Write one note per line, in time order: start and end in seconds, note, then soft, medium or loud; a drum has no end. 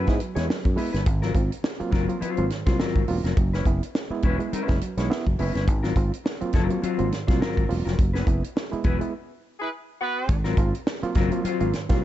0.00 0.13 B3 medium
0.00 0.14 E4 medium
0.00 0.14 G#4 medium
0.00 0.14 B4 medium
0.07 0.18 G#2 medium
0.07 0.19 G#3 medium
0.07 0.19 B3 medium
0.07 0.19 E4 medium
0.07 kick medium
0.07 snare soft
0.07 closed hi-hat soft
0.20 0.35 F#3 medium
0.20 muted clean electric guitar stroke soft
0.20 closed hi-hat medium
0.35 0.47 E2 medium
0.35 0.47 G#3 medium
0.35 0.48 B3 medium
0.35 0.47 B3 soft
0.35 0.48 E4 medium
0.35 0.47 E4 soft
0.35 0.48 G#4 medium
0.35 0.49 C#5 medium
0.35 snare soft
0.35 closed hi-hat medium
0.48 0.63 F#3 medium
0.48 muted clean electric guitar stroke soft
0.48 snare medium
0.64 0.76 F#2 medium
0.64 muted clean electric guitar stroke soft
0.64 kick medium
0.64 closed hi-hat soft
0.76 0.92 G#3 medium
0.76 0.93 B3 medium
0.76 0.92 B3 medium
0.76 0.92 E4 medium
0.76 0.93 E4 medium
0.76 0.92 G#4 medium
0.76 0.91 B4 medium
0.76 open hi-hat medium
0.93 1.07 G1 medium
0.93 0.98 B3 soft
0.93 1.05 B3 soft
0.93 0.98 E4 soft
0.93 1.06 E4 medium
0.93 1.06 G#4 medium
0.93 1.07 B4 medium
0.93 snare soft
0.93 closed hi-hat medium
1.06 1.31 G#1 medium
1.06 1.21 G#2 medium
1.06 1.21 D#3 medium
1.06 muted clean electric guitar stroke soft
1.06 kick loud
1.06 closed hi-hat medium
1.22 1.33 F#3 medium
1.22 1.33 C4 medium
1.22 1.34 F4 medium
1.22 1.34 A#4 medium
1.22 snare soft
1.22 closed hi-hat soft
1.34 1.49 G#1 loud
1.34 1.50 C4 medium
1.34 1.50 F4 medium
1.34 muted clean electric guitar stroke soft
1.34 kick medium
1.34 closed hi-hat medium
1.51 muted clean electric guitar stroke soft
1.51 closed hi-hat medium
1.63 muted clean electric guitar stroke soft
1.63 snare loud
1.79 1.91 F#3 medium
1.79 1.92 A#3 medium
1.79 1.92 C4 medium
1.79 1.92 F4 medium
1.79 muted clean electric guitar stroke soft
1.79 muted fingered electric bass stroke soft
1.79 closed hi-hat soft
1.91 2.06 F#1 medium
1.91 2.08 G#2 medium
1.91 2.07 D#3 medium
1.91 2.14 F#3 medium
1.91 2.08 C4 medium
1.91 2.07 F4 medium
1.91 2.06 A#4 loud
1.91 kick medium
1.91 snare soft
1.91 closed hi-hat medium
2.08 2.20 F#3 medium
2.08 2.20 A#3 medium
2.08 2.20 C4 medium
2.08 2.21 F4 medium
2.08 muted clean electric guitar stroke soft
2.08 closed hi-hat soft
2.20 2.43 F#3 medium
2.20 2.44 C4 medium
2.20 2.44 F4 medium
2.20 2.44 C5 medium
2.20 muted fingered electric bass stroke soft
2.20 closed hi-hat loud
2.37 2.49 G#1 medium
2.37 2.49 F#3 medium
2.37 2.49 A#3 medium
2.37 2.50 C4 medium
2.37 2.50 F4 medium
2.37 closed hi-hat soft
2.49 2.65 G#2 medium
2.49 2.65 D#3 medium
2.49 muted clean electric guitar stroke soft
2.49 snare soft
2.49 closed hi-hat medium
2.66 2.78 C2 loud
2.66 2.78 F#3 medium
2.66 2.77 F#3 medium
2.66 2.78 A#3 medium
2.66 2.78 C4 medium
2.66 2.79 F4 medium
2.66 2.78 F4 medium
2.66 2.80 C5 medium
2.66 kick loud
2.66 snare soft
2.66 closed hi-hat medium
2.78 2.94 G#2 medium
2.78 2.94 D#3 medium
2.78 3.01 F#3 medium
2.78 3.02 C4 medium
2.78 3.02 F4 medium
2.78 3.02 A#4 medium
2.78 snare medium
2.96 3.06 G#1 medium
2.96 kick medium
2.96 closed hi-hat soft
3.08 3.22 E1 medium
3.08 3.23 F#3 medium
3.08 3.23 A#3 medium
3.08 3.23 C4 medium
3.08 3.23 F4 medium
3.08 muted clean electric guitar stroke soft
3.08 open hi-hat medium
3.24 3.35 F1 medium
3.24 3.37 F#3 soft
3.24 3.29 C4 soft
3.24 3.38 C4 soft
3.24 3.29 F4 soft
3.24 3.38 F4 soft
3.24 3.38 A#4 medium
3.24 snare soft
3.24 closed hi-hat medium
3.37 3.62 F#1 loud
3.37 3.51 F#3 medium
3.37 muted clean electric guitar stroke soft
3.37 kick loud
3.37 closed hi-hat medium
3.53 3.65 G#3 medium
3.53 3.65 C#4 medium
3.53 3.66 E4 medium
3.53 3.66 B4 medium
3.53 snare soft
3.53 closed hi-hat soft
3.65 3.80 F#1 medium
3.65 3.81 B3 medium
3.65 3.81 E4 medium
3.65 muted clean electric guitar stroke soft
3.65 kick medium
3.65 closed hi-hat medium
3.82 muted clean electric guitar stroke soft
3.82 closed hi-hat medium
3.95 muted clean electric guitar stroke soft
3.95 snare medium
4.10 4.22 G#3 medium
4.10 4.22 B3 medium
4.10 4.22 E4 medium
4.10 muted fingered electric bass stroke soft
4.10 muted clean electric guitar stroke soft
4.22 4.37 E1 medium
4.22 4.38 F#3 medium
4.22 4.46 G#3 medium
4.22 4.39 C#4 medium
4.22 4.39 E4 loud
4.22 4.38 B4 loud
4.22 kick medium
4.22 closed hi-hat medium
4.39 4.51 G#3 medium
4.39 4.51 B3 medium
4.39 4.51 E4 medium
4.39 muted clean electric guitar stroke soft
4.39 closed hi-hat soft
4.52 4.75 G#3 medium
4.52 4.75 C#4 medium
4.52 4.75 E4 medium
4.52 4.75 B4 medium
4.52 muted fingered electric bass stroke soft
4.52 closed hi-hat loud
4.68 4.80 F#1 medium
4.68 4.80 G#3 medium
4.68 4.80 B3 medium
4.68 4.80 E4 medium
4.68 kick medium
4.68 snare soft
4.68 closed hi-hat soft
4.81 4.96 F#3 medium
4.81 muted clean electric guitar stroke soft
4.81 closed hi-hat medium
4.97 5.08 B1 medium
4.97 5.09 G#3 medium
4.97 5.09 G#3 soft
4.97 5.09 B3 medium
4.97 5.10 C#4 medium
4.97 5.09 E4 medium
4.97 5.10 E4 medium
4.97 5.11 C#5 medium
4.97 snare soft
4.97 closed hi-hat medium
5.10 5.25 B3 medium
5.10 5.25 E4 medium
5.10 muted clean electric guitar stroke soft
5.10 snare medium
5.26 5.37 F#1 medium
5.26 5.38 F#3 medium
5.26 muted clean electric guitar stroke soft
5.26 kick medium
5.26 closed hi-hat soft
5.39 5.53 F#1 medium
5.39 5.56 G#3 medium
5.39 5.54 B3 medium
5.39 5.55 C#4 medium
5.39 5.54 E4 medium
5.39 5.53 B4 medium
5.39 open hi-hat medium
5.54 5.68 G1 medium
5.54 5.67 G#3 medium
5.54 5.67 C#4 medium
5.54 5.68 E4 medium
5.54 5.68 B4 medium
5.54 snare soft
5.54 closed hi-hat medium
5.67 5.93 G#1 medium
5.67 5.82 G#2 medium
5.67 5.82 D#3 medium
5.67 muted clean electric guitar stroke soft
5.67 kick loud
5.67 closed hi-hat medium
5.83 5.95 F#3 medium
5.83 5.95 C4 medium
5.83 5.95 F4 medium
5.83 5.96 A#4 medium
5.83 snare soft
5.83 closed hi-hat soft
5.96 6.10 G#1 loud
5.96 6.11 C4 medium
5.96 6.11 F4 medium
5.96 muted clean electric guitar stroke soft
5.96 kick medium
5.96 closed hi-hat medium
6.12 muted clean electric guitar stroke soft
6.12 closed hi-hat medium
6.24 muted clean electric guitar stroke soft
6.24 snare medium
6.41 6.53 F#3 medium
6.41 6.53 A#3 medium
6.41 6.53 C4 medium
6.41 6.53 F4 medium
6.41 muted clean electric guitar stroke medium
6.41 muted fingered electric bass stroke soft
6.41 closed hi-hat soft
6.53 6.68 F#1 medium
6.53 6.69 G#2 medium
6.53 6.69 D#3 medium
6.53 6.76 F#3 medium
6.53 6.69 C4 medium
6.53 6.69 F4 loud
6.53 6.68 A#4 loud
6.53 kick medium
6.53 snare soft
6.53 closed hi-hat medium
6.69 6.82 F#3 medium
6.69 6.82 A#3 medium
6.69 6.82 C4 medium
6.69 6.82 F4 medium
6.69 muted clean electric guitar stroke soft
6.69 closed hi-hat soft
6.82 7.05 F#3 medium
6.82 7.05 C4 medium
6.82 7.06 F4 medium
6.82 7.06 C5 medium
6.82 muted fingered electric bass stroke soft
6.82 closed hi-hat medium
6.98 7.10 G#1 medium
6.98 7.10 F#3 medium
6.98 7.10 A#3 medium
6.98 7.11 C4 medium
6.98 7.11 F4 medium
6.98 closed hi-hat soft
7.11 7.26 G#2 medium
7.11 7.26 D#3 medium
7.11 muted clean electric guitar stroke soft
7.11 snare soft
7.11 closed hi-hat medium
7.27 7.39 C2 loud
7.27 7.39 F#3 medium
7.27 7.39 F#3 soft
7.27 7.39 A#3 medium
7.27 7.39 C4 medium
7.27 7.40 F4 medium
7.27 7.41 C5 medium
7.27 kick loud
7.27 snare soft
7.27 closed hi-hat medium
7.40 7.55 G#2 medium
7.40 7.55 D#3 medium
7.40 7.63 F#3 medium
7.40 7.63 C4 medium
7.40 7.63 F4 medium
7.40 7.64 A#4 loud
7.40 snare medium
7.57 7.68 G#1 medium
7.57 kick medium
7.57 closed hi-hat soft
7.69 7.84 E1 medium
7.69 7.84 F#3 medium
7.69 7.84 A#3 medium
7.69 7.84 C4 medium
7.69 7.84 F4 medium
7.69 muted clean electric guitar stroke soft
7.69 open hi-hat medium
7.85 7.97 F1 medium
7.85 7.97 F#3 medium
7.85 7.91 C4 soft
7.85 7.98 C4 medium
7.85 7.91 F4 soft
7.85 7.98 F4 medium
7.85 7.98 A#4 medium
7.85 snare soft
7.85 closed hi-hat medium
7.98 8.24 F#1 medium
7.98 8.13 F#3 medium
7.98 muted clean electric guitar stroke soft
7.98 kick loud
7.98 closed hi-hat medium
8.13 8.25 B3 medium
8.13 8.26 E4 medium
8.13 8.26 G#4 medium
8.13 8.27 B4 medium
8.13 snare soft
8.13 closed hi-hat soft
8.27 8.41 F#1 medium
8.27 8.42 B3 medium
8.27 8.42 E4 medium
8.27 muted clean electric guitar stroke soft
8.27 kick medium
8.27 closed hi-hat medium
8.43 muted clean electric guitar stroke soft
8.43 closed hi-hat medium
8.56 muted clean electric guitar stroke soft
8.56 snare loud
8.71 8.84 G#3 medium
8.71 8.84 B3 medium
8.71 8.84 E4 medium
8.71 muted clean electric guitar stroke soft
8.71 muted fingered electric bass stroke soft
8.71 closed hi-hat soft
8.84 8.99 E1 medium
8.84 9.00 F#3 medium
8.84 9.07 B3 medium
8.84 9.00 E4 loud
8.84 9.00 G#4 loud
8.84 8.99 B4 loud
8.84 kick loud
8.84 closed hi-hat medium
9.00 9.12 G#3 medium
9.00 9.13 B3 medium
9.00 9.13 E4 medium
9.00 muted clean electric guitar stroke soft
9.00 closed hi-hat soft
9.60 9.68 E4 loud
9.60 9.68 G#4 medium
9.60 9.68 B4 loud
10.00 10.39 B3 loud
10.00 10.39 F#4 loud
10.00 10.39 B4 loud
10.28 10.54 G#1 medium
10.28 10.44 G#2 medium
10.28 10.44 D#3 medium
10.28 muted clean electric guitar stroke soft
10.28 kick loud
10.28 closed hi-hat medium
10.44 10.56 F#3 medium
10.44 10.57 C4 medium
10.44 10.57 F4 medium
10.44 10.58 A#4 medium
10.44 snare soft
10.44 closed hi-hat soft
10.57 10.71 G#1 loud
10.57 10.73 C4 medium
10.57 10.73 F4 medium
10.57 muted clean electric guitar stroke soft
10.57 kick medium
10.57 closed hi-hat medium
10.74 muted clean electric guitar stroke soft
10.74 closed hi-hat medium
10.87 muted clean electric guitar stroke soft
10.87 snare loud
11.02 11.15 F#3 medium
11.02 11.15 A#3 medium
11.02 11.15 C4 medium
11.02 11.15 F4 medium
11.02 muted clean electric guitar stroke soft
11.02 muted fingered electric bass stroke medium
11.02 closed hi-hat soft
11.15 11.30 F#1 medium
11.15 11.31 G#2 medium
11.15 11.31 D#3 medium
11.15 11.38 F#3 medium
11.15 11.32 C4 loud
11.15 11.31 F4 loud
11.15 11.31 A#4 loud
11.15 kick medium
11.15 snare soft
11.15 closed hi-hat medium
11.32 11.44 F#3 medium
11.32 11.44 A#3 medium
11.32 11.44 C4 medium
11.32 11.44 F4 medium
11.32 muted clean electric guitar stroke medium
11.32 closed hi-hat soft
11.44 11.67 F#3 medium
11.44 11.67 C4 medium
11.44 11.67 F4 loud
11.44 11.68 C5 medium
11.44 muted fingered electric bass stroke soft
11.44 closed hi-hat medium
11.60 11.72 G#1 medium
11.60 11.72 F#3 medium
11.60 11.73 A#3 medium
11.60 11.72 C4 medium
11.60 11.73 F4 medium
11.60 closed hi-hat soft
11.73 11.88 G#2 medium
11.73 11.88 D#3 medium
11.73 muted clean electric guitar stroke soft
11.73 snare soft
11.73 closed hi-hat medium
11.89 12.01 C2 loud
11.89 12.01 F#3 medium
11.89 12.01 F#3 soft
11.89 12.01 A#3 medium
11.89 12.01 C4 medium
11.89 12.02 C4 medium
11.89 12.01 F4 medium
11.89 12.03 F4 medium
11.89 12.04 C5 medium
11.89 kick medium
11.89 snare soft
11.89 closed hi-hat medium